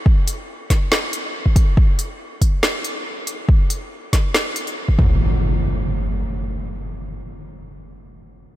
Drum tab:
HH |--x---x---x---x-|--x---x---x---x-|--x---x---xx----|----------------|
SD |------o-o-------|--------o-------|------o-o-------|----------------|
BD |o-----o------oo-|o-----o---------|o-----o------oo-|----------------|

HH |----------------|
SD |----------------|
BD |----------------|